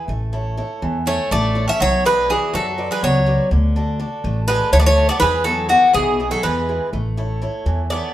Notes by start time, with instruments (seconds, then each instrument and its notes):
0.08 upright bass A1, steel-string acoustic guitar A3
0.33 steel-string acoustic guitar E4 A4 C#5
0.57 steel-string acoustic guitar E4 A4 C#5
0.82 upright bass E2, steel-string acoustic guitar E3
1.06 bouzouki A3 C#5, steel-string acoustic guitar E4 A4 C#5
1.31 upright bass A1, bouzouki A3 D5, steel-string acoustic guitar A3
1.55 steel-string acoustic guitar E4 A4 C#5
1.68 bouzouki C#4 E5
1.80 upright bass B1, bouzouki F#3 C#5, steel-string acoustic guitar B3
2.05 bouzouki G#3 B4, steel-string acoustic guitar F#4 B4 D5
2.30 bouzouki E3 G#4, steel-string acoustic guitar F#4 B4 D5
2.53 upright bass F#2, bouzouki F#3 A4, steel-string acoustic guitar F#3
2.78 steel-string acoustic guitar F#4 B4 D5
2.91 bouzouki G#3 B4
3.03 upright bass C#2, bouzouki F#3 C#5, steel-string acoustic guitar B3
3.26 steel-string acoustic guitar F#4 B4 D5
3.51 upright bass D2, steel-string acoustic guitar D3
3.76 steel-string acoustic guitar D4 F#4 A4
3.99 steel-string acoustic guitar D4 F#4 A4
4.24 upright bass A1, steel-string acoustic guitar A3
4.48 bouzouki G#3 B4, steel-string acoustic guitar D4 F#4 A4
4.72 upright bass D2, steel-string acoustic guitar D3, bouzouki A3 C#5
4.80 bouzouki B3 D5
4.86 bouzouki A3 C#5
4.97 steel-string acoustic guitar D4 F#4 A4
5.09 bouzouki B3 D5
5.20 upright bass E2, steel-string acoustic guitar E3, bouzouki G#3 B4
5.44 bouzouki F#3 A4, steel-string acoustic guitar B3 E4 G#4
5.69 bouzouki D3 F#4, steel-string acoustic guitar B3 E4 G#4
5.93 upright bass B1, steel-string acoustic guitar B2, bouzouki E3 G#4
6.20 steel-string acoustic guitar B3 E4 G#4
6.31 bouzouki F#3 A4
6.43 upright bass E2, steel-string acoustic guitar E3, bouzouki G#3 B4
6.69 steel-string acoustic guitar B3 E4 G#4
6.93 upright bass A1, steel-string acoustic guitar A3
7.17 steel-string acoustic guitar E4 A4 C#5
7.42 steel-string acoustic guitar E4 A4 C#5
7.66 upright bass E2, steel-string acoustic guitar E3
7.90 bouzouki B3 D5, steel-string acoustic guitar E4 A4 C#5